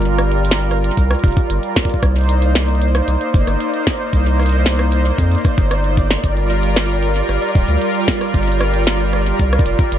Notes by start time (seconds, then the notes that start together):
Already playing: G1 G3 F4 A#4 D5
0.02 closed hi-hat
0.18 cross-stick, closed hi-hat
0.32 closed hi-hat
0.45 closed hi-hat
0.51 snare
0.71 cross-stick, closed hi-hat
0.84 closed hi-hat
0.97 C2, kick, closed hi-hat
1.11 cross-stick, closed hi-hat
1.15 closed hi-hat
1.19 closed hi-hat
1.24 F1, kick, closed hi-hat
1.28 closed hi-hat
1.32 closed hi-hat
1.37 kick, closed hi-hat
1.50 G1, closed hi-hat
1.63 closed hi-hat
1.76 kick, snare, closed hi-hat
1.85 kick
1.90 closed hi-hat
1.94 kick
2.03 C2 A#3 D#4 C5, kick, cross-stick, closed hi-hat
2.16 closed hi-hat
2.18 closed hi-hat
2.21 closed hi-hat
2.24 closed hi-hat
2.26 closed hi-hat
2.29 closed hi-hat
2.42 closed hi-hat
2.55 cross-stick, snare, closed hi-hat
2.68 closed hi-hat
2.75 closed hi-hat
2.82 closed hi-hat
2.88 closed hi-hat
2.95 cross-stick, closed hi-hat
3.08 C2, closed hi-hat
3.21 closed hi-hat
3.34 G1, kick, closed hi-hat
3.47 G1, cross-stick, closed hi-hat
3.61 closed hi-hat
3.74 closed hi-hat
3.87 kick, snare
4.13 C2, kick, closed hi-hat
4.26 closed hi-hat
4.39 cross-stick, closed hi-hat
4.43 closed hi-hat
4.46 closed hi-hat
4.49 closed hi-hat
4.53 closed hi-hat
4.66 snare, closed hi-hat
4.79 cross-stick, closed hi-hat
4.92 closed hi-hat
5.05 closed hi-hat
5.18 F2, kick, closed hi-hat
5.32 closed hi-hat
5.35 closed hi-hat
5.38 closed hi-hat
5.42 kick, cross-stick, closed hi-hat
5.45 closed hi-hat
5.48 closed hi-hat
5.51 closed hi-hat
5.55 G1, kick, closed hi-hat
5.58 closed hi-hat
5.71 cross-stick, closed hi-hat
5.84 closed hi-hat
5.97 kick, closed hi-hat
6.11 snare
6.24 G1 G3 F4 A#4, kick, closed hi-hat
6.37 closed hi-hat
6.50 closed hi-hat
6.63 closed hi-hat
6.76 cross-stick, snare, closed hi-hat
6.90 closed hi-hat
7.03 closed hi-hat
7.16 closed hi-hat
7.29 G1, cross-stick, closed hi-hat
7.42 closed hi-hat
7.49 closed hi-hat
7.55 D1, kick, closed hi-hat
7.62 closed hi-hat
7.68 D2, closed hi-hat
7.82 closed hi-hat
7.95 closed hi-hat
8.08 kick, snare, closed hi-hat
8.21 cross-stick, closed hi-hat
8.34 G1, kick, closed hi-hat
8.43 closed hi-hat
8.47 closed hi-hat
8.52 closed hi-hat
8.61 cross-stick, closed hi-hat
8.74 closed hi-hat
8.87 snare, closed hi-hat
9.00 closed hi-hat
9.13 cross-stick, closed hi-hat
9.26 closed hi-hat
9.39 C2, kick, closed hi-hat
9.53 cross-stick, closed hi-hat
9.59 kick
9.66 F1, closed hi-hat
9.79 kick, closed hi-hat
9.92 G1, closed hi-hat